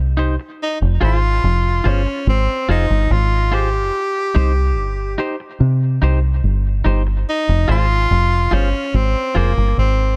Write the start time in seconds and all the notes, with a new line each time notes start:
Already playing: C2
0.17 D#4 G4 C5
0.40 muted clean electric guitar stroke
0.63 D#4
0.82 F1
1.01 G#1 F4 G#4 C5
1.44 F1
1.84 G1 C#4 F4 G#4 C5
2.06 muted clean electric guitar stroke
2.27 G#1 C4
2.69 F1 D#4 F4 G#4 C5
2.90 G1
3.10 G#1 F4
3.52 F4 G4 G#4 C5
3.73 muted clean electric guitar stroke
4.35 C2 D#4 G4 C5
4.77 G1
5.18 D#4 G4 C5
5.40 muted clean electric guitar stroke
5.60 C3
6.02 C2 D#4 G4 C5
6.44 G1
6.84 G1 D#4 G4 C5
7.07 muted clean electric guitar stroke
7.29 D#4
7.49 F1
7.68 G#1 F4 G#4 C5
8.11 F1
8.51 G1 C#4 F4 G#4 C5
8.73 muted clean electric guitar stroke
8.94 G#1 C4
9.35 F1 A#3 F4 G#4 C5
9.57 G1
9.78 G#1 C4